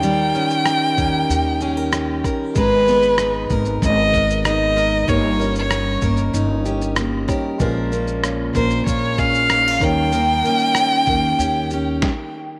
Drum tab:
SH |x-xxx-x-x-x-x-x-|x-xxx-xxx-xxx-x-|x-xxx-xxx-xxx-x-|x-xxx-xxx-xxx-x-|
SD |----r-------r-r-|----r-------r-r-|----r-------r-r-|----r-------r-r-|
BD |------o-------o-|o-----o-o-o-----|o-----o-------o-|o-----o-o-o---o-|

SH |x-xxx-x-x-x-----|
SD |----r-------o---|
BD |------o-----o---|